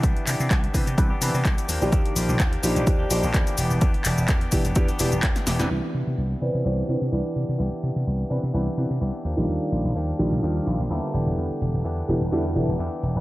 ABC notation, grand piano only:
X:1
M:4/4
L:1/16
Q:"Swing 16ths" 1/4=127
K:C
V:1 name="Grand piano"
[E,DB]6 [E,CDB] z [E,CDB] z [E,CDB] z4 [_E,F,DG]- | [_E,F,DG]6 [F,D_EG]2 [F,DEG]2 [F,DEG] z [=E,B,DG]4- | [E,B,DG]6 [E,B,DG] z [E,B,DG] z [E,B,DG] z4 [E,CDB]- | [E,CDB]2 z4 [E,CDB]2 [E,CDB]2 [E,CDB] z [E,DB]4- |
[E,DB]6 [E,CDB] z [E,CDB] z [E,CDB] z4 [_E,G,DF]- | [_E,G,DF]6 [E,G,DF]2 [E,G,DF]2 [E,G,DF] z [D,G,B,=E]4- | [D,G,B,E]6 [D,G,B,E] z [D,G,B,E] z [D,G,B,E] z4 [E,DB] |]